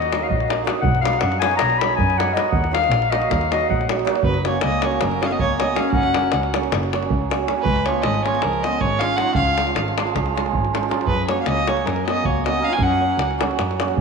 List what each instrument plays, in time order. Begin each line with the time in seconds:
Already playing: double bass D#2, hammered dulcimer F#3, clarinet D#5
0.02 davul high
0.12 hammered dulcimer F#3 A#3 D#4 F#4, davul high
0.23 clarinet F5
0.29 double bass A#1, clarinet D#5, davul low
0.40 davul high
0.48 hammered dulcimer F#3 A#3 D#4 F#4, davul high
0.64 hammered dulcimer F#3 A#3 D#4 F#4, davul high
0.81 double bass B1, clarinet F#5, davul low
0.95 davul high
1.01 hammered dulcimer F#3 B3 D#4 F#4, clarinet F5
1.05 davul high
1.13 davul high
1.19 double bass F#2, clarinet F#5, davul high
1.32 davul high
1.39 hammered dulcimer F#3 B3 D#4, clarinet G#5, davul high
1.44 hammered dulcimer F#4
1.51 davul high
1.57 clarinet A#5, davul high
1.61 double bass B1
1.70 davul high
1.79 hammered dulcimer F#3 B3 D#4, clarinet B5, davul high
1.83 hammered dulcimer F#4
1.96 double bass F#2, clarinet G#5, davul low
2.10 davul high
2.17 hammered dulcimer F#3 B3 D#4 F#4, clarinet F#5, davul high
2.33 hammered dulcimer F#3 B3 D#4 F#4, clarinet D#5, davul high
2.52 double bass D#2, clarinet F#5, davul low
2.64 davul high
2.71 hammered dulcimer F#3 A#3 D#4 F#4, clarinet F5, davul high
2.84 davul high
2.90 double bass A#1, davul high
3.02 davul high
3.11 hammered dulcimer F#3 A#3 D#4 F#4, clarinet D#5, davul high
3.22 davul high
3.30 double bass D#2, clarinet F5, davul high, davul low
3.41 davul high
3.51 hammered dulcimer F#3 A#3 D#4 F#4, clarinet D#5, davul high
3.61 davul high
3.69 double bass A#1, clarinet F#5, davul low
3.81 davul high
3.89 hammered dulcimer F#3 A#3 D#4 F#4, davul high
3.99 davul high
4.05 hammered dulcimer F#3 A#3 D#4 F#4, davul high
4.16 davul high
4.22 double bass F#1, clarinet F#3, fiddle B4, davul low
4.34 davul high
4.43 hammered dulcimer F#3 A#3 C#4 F#4, clarinet A#3, fiddle C#5, davul high
4.61 double bass C#2, clarinet A#3, fiddle D#5, davul high
4.72 davul high
4.82 hammered dulcimer F#3 A#3 C#4 F#4, clarinet A#3, fiddle C#5, davul high
4.91 davul high
5.01 double bass F#1, clarinet F#3, fiddle A#4, davul high
5.11 davul high
5.21 hammered dulcimer F#3 A#3 C#4 F#4, clarinet B3, fiddle D#5, davul high
5.25 clarinet C#4, fiddle F5
5.31 clarinet B3, fiddle D#5, davul high
5.37 double bass C#2, clarinet A#3, fiddle C#5 D#5, davul low
5.58 hammered dulcimer F#3 A#3 C#4 F#4, clarinet B3, fiddle D#5, davul high
5.74 hammered dulcimer F#3 A#3 C#4 F#4, clarinet C#4, fiddle F5, davul high
5.92 double bass F#1, clarinet C#4, fiddle F#5, davul low
6.03 davul high
6.14 hammered dulcimer F#3 A#3 C#4 F#4, davul high
6.32 double bass C#2, davul high
6.43 davul high
6.54 hammered dulcimer F#3 A#3 C#4 F#4, davul high
6.63 davul high
6.72 double bass F#1, davul high
6.83 davul high
6.93 hammered dulcimer F#3 A#3 C#4 F#4, davul high
7.03 davul high
7.10 double bass C#2, davul low
7.30 hammered dulcimer F#3 A#3 C#4 F#4, davul high
7.47 hammered dulcimer F#3 A#3 C#4 F#4, davul high
7.62 double bass C#2, clarinet G#3, fiddle B4, davul low
7.76 davul high
7.85 hammered dulcimer F3 G#3 C#4 F4, clarinet A#3, fiddle C#5, davul high
8.02 double bass G#1, clarinet G#3, fiddle D#5, davul high
8.14 davul high
8.23 hammered dulcimer F3 G#3 C#4 F4, clarinet A#3, fiddle C#5, davul high
8.35 davul high
8.42 double bass C#2, clarinet F3, fiddle A#4, davul high
8.53 davul high
8.63 hammered dulcimer F3 G#3 C#4 F4, clarinet B3, fiddle D#5, davul high
8.73 davul high
8.79 double bass G#1, clarinet G#3, fiddle C#5, davul low
8.99 clarinet C#4, fiddle F5, davul high
9.03 hammered dulcimer F3 G#3 C#4 F4
9.17 hammered dulcimer F3 G#3, clarinet D#4, fiddle F#5, davul high
9.21 hammered dulcimer C#4 F4
9.34 double bass C#2, clarinet C#4, fiddle F5, davul low
9.47 davul high
9.58 hammered dulcimer F3 G#3 C#4 F4, davul high
9.67 davul high
9.75 double bass G#1, davul high
9.88 davul high
9.97 hammered dulcimer F3 G#3 C#4 F4, davul high
10.07 davul high
10.15 double bass C#2, davul high, davul low
10.26 davul high
10.35 hammered dulcimer F3 G#3 C#4 F4, davul high
10.46 davul high
10.53 double bass G#1, davul low
10.65 davul high
10.74 hammered dulcimer F3 G#3 C#4 F4, davul high
10.83 davul high
10.89 hammered dulcimer F3 G#3 C#4 F4, davul high
11.01 davul high
11.06 double bass F#2, clarinet F#3, fiddle B4, davul low
11.27 hammered dulcimer F#3 A#3 C#4 F#4, clarinet A#3, fiddle C#5, davul high
11.41 clarinet A#3 C#4, fiddle F5
11.46 double bass C#2, fiddle D#5, davul high
11.58 davul high
11.66 hammered dulcimer F#3 A#3 C#4 F#4, clarinet A#3, fiddle C#5, davul high
11.77 davul high
11.84 double bass F#2, clarinet F#3, fiddle A#4, davul high
11.96 davul high
12.06 hammered dulcimer F#3 A#3 C#4 F#4, clarinet B3, fiddle D#5, davul high
12.17 davul high
12.24 double bass C#2, clarinet A#3, fiddle C#5, davul low
12.45 hammered dulcimer F#3 A#3 C#4 F#4, clarinet B3, fiddle D#5, davul high
12.60 hammered dulcimer F#3 A#3 C#4 F#4, clarinet C#4
12.64 fiddle F5
12.70 clarinet F4, fiddle G#5
12.77 double bass F#2, clarinet C#4, davul low
12.83 fiddle F#5
12.91 davul high
13.00 hammered dulcimer F#3 A#3 C#4 F#4
13.18 double bass C#2, davul high
13.31 davul high
13.38 hammered dulcimer F#3 A#3 C#4 F#4, davul high
13.51 davul high
13.59 double bass F#2, davul high
13.71 davul high
13.80 hammered dulcimer F#3 A#3 C#4 F#4, davul high
13.88 davul high
13.97 double bass C#2, davul low